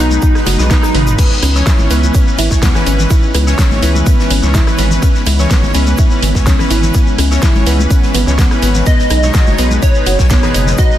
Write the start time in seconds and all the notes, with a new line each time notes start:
Already playing: G#3 B3 D#4 D#6
0.00 B1 B2 G#3 D#4 B4
0.11 high conga, shekere
0.22 D#4, kick, shekere, shaker
0.35 B2 G#3 D#4 B4, cross-stick, snare, high woodblock, shekere
0.46 F#1 F#4, snare, open hi-hat, high conga, shaker
0.59 B1 B2 G#3 D#4 B4, snare, shekere
0.70 B2 G#3 B3 D#4 D#5, kick, snare, shekere, shaker
0.82 cross-stick, snare, high tom, high woodblock, shaker, shekere
0.94 G#1 C#3 G#3 D#4 B4, snare, open hi-hat, mid tom, low conga
1.07 mid tom, shekere, shaker
1.18 C#3 E3 G#3 B3 C#4 D#4 E4 B4, kick, crash, ride, shekere, shaker
1.30 snare, shekere
1.42 C#2 C#4, cross-stick, open hi-hat, shaker
1.55 E3 C#4 C#5, snare, high woodblock, shekere
1.66 E4, kick, snare, ride, shaker, shekere
1.79 G#1, snare, high conga, shekere
1.90 C#2 E3 B3 C#4 B4, open hi-hat, shaker
2.03 high conga, shekere
2.14 C#4, kick, ride, shaker, shekere
2.27 E3 C#4 B4, shekere
2.38 G#1 E4, open hi-hat, shaker
2.51 C#2 E3 C#4 C#5, kick, snare, shekere
2.62 B3, kick, snare, ride, shekere, shaker
2.75 E3 C#4 B4, cross-stick, snare, low conga, shekere
2.86 G#1 C#4, open hi-hat, shaker
2.99 snare, low conga, shekere
3.10 E3 C#4 E4 B4, kick, ride, shaker, shekere
3.23 shekere
3.34 C#2 B3, cross-stick, open hi-hat, shaker
3.47 E3 C#4 C#5, snare, high woodblock, shekere
3.58 C#4, kick, snare, ride, shaker, shekere
3.71 G#1, snare, high conga, shekere
3.82 C#2 E3 C#4 E4 B4, open hi-hat, shaker
3.95 high conga, shekere
4.06 B3, kick, ride, shaker, shekere
4.19 E3 C#4 B4, snare, shekere
4.30 G#1 C#4, open hi-hat, shaker
4.43 C#2 E3 C#4 C#5, snare, shekere
4.54 E4, kick, snare, ride, shekere, shaker
4.66 E3 C#4 B4, cross-stick, snare, high woodblock, shekere
4.78 G#1 B3, open hi-hat, shaker
4.91 snare, low conga, shekere
5.02 E3 C#4 B4, kick, ride, shekere, shaker
5.15 snare, shekere
5.26 C#2 E4, cross-stick, open hi-hat, shaker
5.39 E3 C#4 C#5, snare, high woodblock, shekere
5.50 B3, kick, snare, ride, shaker, shekere
5.63 G#1, snare, high conga, shekere
5.74 C#2 E3 C#4 B4, open hi-hat, shaker
5.87 high conga, shekere
5.97 E4, kick, ride, shaker, shekere
6.10 E3 C#4 B4, shekere
6.22 G#1 B3, open hi-hat, shaker
6.35 C#2 E3 C#4 C#5, kick, snare, shekere
6.46 C#4, kick, snare, ride, shaker, shekere
6.59 E3 C#4 B4, cross-stick, snare, low conga, shekere
6.70 G#1 E4, open hi-hat, shaker
6.83 snare, low conga, shekere
6.94 E3 B3 C#4 B4, kick, ride, shaker, shekere
7.07 shekere
7.18 C#2 C#4, cross-stick, open hi-hat, shaker
7.31 E3 C#4 C#5, snare, high woodblock, shekere
7.42 E4, kick, snare, ride, shaker, shekere
7.55 G#1, snare, high conga, shekere
7.66 C#2 E3 B3 C#4 B4, open hi-hat, shaker
7.79 high conga, shekere
7.90 C#4, kick, ride, shaker, shekere
8.03 E3 C#4 B4, snare, shekere
8.14 G#1 B3, open hi-hat, shaker
8.27 C#2 E3 C#4 C#5, snare, shekere
8.38 B3, kick, snare, ride, shaker, shekere
8.51 E3 C#4 B4, cross-stick, snare, high woodblock, shekere
8.62 G#1 B3, open hi-hat, shaker
8.75 snare, low conga, shekere
8.86 B2 G#3 B3 D#4 B4 D#5, kick, ride, shaker, shekere
8.99 snare, shekere
9.10 B1 D#4, cross-stick, open hi-hat, shaker
9.22 B2 G#3 D#4 C#5, snare, high woodblock, shekere
9.34 F#4, kick, snare, ride, shaker, shekere
9.46 F#1, snare, high conga, shekere
9.58 B1 B2 G#3 B3 D#4 B4, open hi-hat, shaker
9.71 high conga, shekere
9.82 D#4 C#5, kick, ride, shaker, shekere
9.94 B2 G#3 D#4 B4, shekere
10.06 F#1 F#4, open hi-hat, shaker
10.19 B1 B2 G#3 D#4 C#5, kick, snare, shekere
10.29 B3, kick, snare, ride, shaker, shekere
10.43 B2 G#3 D#4 B4, cross-stick, snare, low conga, shekere
10.54 F#1 D#4, open hi-hat, shaker
10.67 snare, low conga, shekere
10.78 B2 G#3 D#4 F#4 B4 D#5, kick, ride, shaker, shekere
10.91 shekere